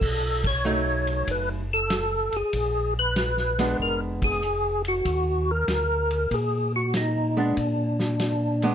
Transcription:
Already playing: A4
0.01 B1, kick, crash
0.44 C#5, kick, ride
0.64 F#3 A3 D#4, hi-hat pedal
1.07 ride
1.27 F#1 B4, kick, ride
1.73 A4
1.90 snare, hi-hat pedal, ride
2.32 F#1, ride
2.37 G#4
2.53 A#1, kick, ride
2.99 B4
3.16 snare, hi-hat pedal, ride
3.37 snare
3.59 G#3 B3 D4, snare, ride
3.79 F1 A#4, kick
4.22 G#4, kick, ride
4.42 hi-hat pedal
4.85 F#4, ride
5.05 D#2, kick, ride
5.51 A#4
5.68 D2, snare, hi-hat pedal, ride
6.11 ride
6.31 A#2 G#4, kick, ride
6.76 F#4
6.94 D#4, snare, hi-hat pedal, ride
7.37 G#3 B3 D4
7.56 A#2, kick, ride
8.00 snare
8.20 snare, hi-hat pedal, ride
8.62 G#3 B3 D4, ride

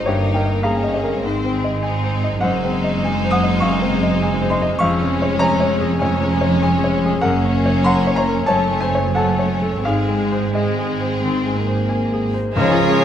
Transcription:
Already playing: D#4
0.05 G1 G2 A#3 G4 A#4 C#5
0.28 D#4
0.34 A#4 G5
0.45 D#5
0.63 C#4 G#4 C#5 F5 A#5
0.83 D#5
0.94 G#4 D#5
1.04 A#4
1.22 G#1 G#2 C4 C5
1.45 C4
1.54 G#4
1.64 D#5
1.82 C4 D#4 G#4 G#5
2.04 C5
2.24 D#5
2.41 F#1 F#2 G#3 D#4 C5 F#5
2.65 C4
2.84 D#5
3.04 G#5
3.25 C5
3.31 F#5 D#6
3.43 D#5
3.60 F#2 F5 C#6
3.82 C4
4.03 D#5
4.22 G#5
4.42 C5
4.50 D#5 C6
4.62 D#5
4.79 F1 F2 G#3 C#4 F5 C#6
4.83 C#5
5.02 C#4
5.22 C#5
5.39 C#5 G#5 A#5
5.60 C#5
5.80 G#4
5.98 F2 G#3 C#4 C#5 G#5
6.21 C#4
6.41 C#5
6.63 G#5
6.84 C#5
7.05 G#4
7.21 F#1 F#2 A#3 C#4 A#4 C#5 F#5
7.45 C#4
7.66 C#5
7.84 F#5 A#5 C6
8.07 C#5
8.16 C#5 A#5
8.28 A#4
8.46 F#1 F#2 A3 C#4 C#5 A5
8.71 C#4
8.81 C5 G#5
8.95 C#5
9.13 A3 C#4 A4 C#5 F#5 A5
9.39 C#5
9.62 A4
9.82 G#1 G#2 G#3 C4 G#4 F5
9.86 G#2 G#4
10.08 G#3
10.32 C5
10.52 G#3 C4 G#4 D#5 G#5
10.56 G#4
10.78 G#4
11.01 C5
11.21 D#3 C4
11.46 G#3
11.56 A#3
11.67 C5
11.89 G#5
12.13 G#4
12.34 C5
12.54 C#2 G#2 C#3 F3 G#3 C#4 F4 G#4 A#4 C#5
12.71 C#4 F4
12.87 G#3 F4

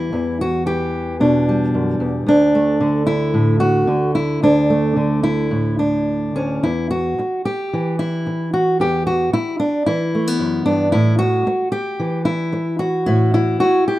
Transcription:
Already playing: E3 G3 B3 E4
0.13 E2
0.41 F#4
0.66 E3 G4
1.20 B2 D4
1.49 G3
1.74 F#2
2.00 E2
2.27 D2 D4
2.55 A3
2.81 D3
3.07 E4
3.34 A2
3.60 F#4
3.87 D3
4.15 E4
4.43 D2 D4
4.70 A3
4.96 D3
5.23 E4
5.51 A2
5.79 D4
6.35 D2 C#4
6.63 E2 E4
6.91 F#4
7.18 muted steel-string acoustic guitar stroke
7.45 G4
7.73 E3
7.99 E4
8.26 muted steel-string acoustic guitar stroke
8.54 F#4
8.80 E2 G4
9.07 F#4
9.33 E4, muted steel-string acoustic guitar stroke
9.60 D4
9.86 E3 E4
10.15 A3
10.27 B3
10.39 F#2
10.66 G2 D4
10.92 A2 E4
11.19 F#4
11.46 muted steel-string acoustic guitar stroke
11.72 G4
12.00 E3
12.25 E4
12.52 muted steel-string acoustic guitar stroke
12.79 F#4
13.06 A2 E4
13.34 E4
13.60 F#4, muted steel-string acoustic guitar stroke
13.88 G4

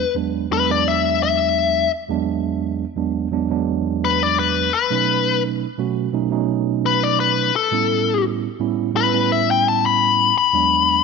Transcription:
Already playing: B4
0.15 E2 F#3 G#3 B3 D4
0.50 E2 F#3 G#3 B3 D4 B4
0.68 E2 F#3 G#3 B3 D4 D5
0.88 E5
1.23 E5
2.09 E2 F#3 G#3 B3 D4
2.96 E2 F#3 G#3 B3 D4
3.31 E2 F#3 G#3 B3 D4
3.50 E2 F#3 G#3 B3 D4
4.05 B4
4.23 D5
4.39 B4
4.74 B4
4.90 B2 F#3 A3 C#4 D#4
5.78 B2 F#3 A3 C#4 F#4
6.13 B2 F#3 A3 C#4 D#4
6.31 B2 F#3 A3 C#4 D#4
6.86 B4
7.04 D5
7.20 B4
7.56 A4
7.71 A2 G3 B3 C#4 E4
8.59 A2 G3 B3 C#4 E4
8.94 A2 G3 B3 C#4 E4 B4
9.12 A2 G3 B3 C#4 E4
9.32 E5
9.51 G5
9.68 A5
9.86 B5
10.38 B5
10.53 E2 F#3 G#3 B3 D4

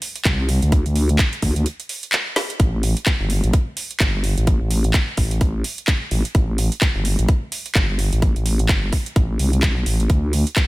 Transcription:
0.02 open hi-hat
0.16 closed hi-hat
0.25 C2, kick, clap, closed hi-hat
0.49 open hi-hat
0.62 D2, closed hi-hat
0.72 kick, closed hi-hat
0.86 D2, closed hi-hat
0.96 open hi-hat
1.09 closed hi-hat
1.19 kick, clap, closed hi-hat
1.33 closed hi-hat
1.42 D2, kick, open hi-hat
1.56 D2, closed hi-hat
1.66 closed hi-hat
1.80 closed hi-hat
1.89 open hi-hat
2.03 closed hi-hat
2.12 clap, closed hi-hat
2.36 snare, open hi-hat
2.50 closed hi-hat
2.60 A1, kick, closed hi-hat
2.83 open hi-hat
2.97 closed hi-hat
3.06 kick, clap, closed hi-hat
3.20 G1
3.30 open hi-hat
3.44 A1, closed hi-hat
3.53 kick, closed hi-hat
3.77 open hi-hat
3.91 closed hi-hat
4.00 G1, kick, clap, closed hi-hat
4.24 open hi-hat
4.38 A1, closed hi-hat
4.47 kick, closed hi-hat
4.61 A1
4.71 open hi-hat
4.84 closed hi-hat
4.94 kick, clap, closed hi-hat
5.17 A1, kick, open hi-hat
5.31 closed hi-hat
5.41 kick, closed hi-hat
5.64 open hi-hat
5.78 closed hi-hat
5.87 kick, clap, closed hi-hat
6.11 A1, open hi-hat
6.25 closed hi-hat
6.35 A1, kick, closed hi-hat
6.58 open hi-hat
6.72 closed hi-hat
6.81 kick, clap, closed hi-hat
6.95 G1
7.05 open hi-hat
7.19 A1, closed hi-hat
7.29 kick, closed hi-hat
7.52 open hi-hat
7.66 closed hi-hat
7.75 G1, kick, clap, closed hi-hat
7.99 open hi-hat
8.13 A1, closed hi-hat
8.22 kick, closed hi-hat
8.36 A1, closed hi-hat
8.46 open hi-hat
8.59 closed hi-hat
8.69 G1, kick, clap, closed hi-hat
8.93 kick, open hi-hat
9.06 closed hi-hat
9.16 A1, kick, closed hi-hat
9.39 C2, open hi-hat
9.53 closed hi-hat
9.63 kick, clap, closed hi-hat
9.86 A1, open hi-hat
10.00 closed hi-hat
10.10 D2, kick, closed hi-hat
10.33 open hi-hat
10.47 closed hi-hat
10.56 kick, clap, closed hi-hat

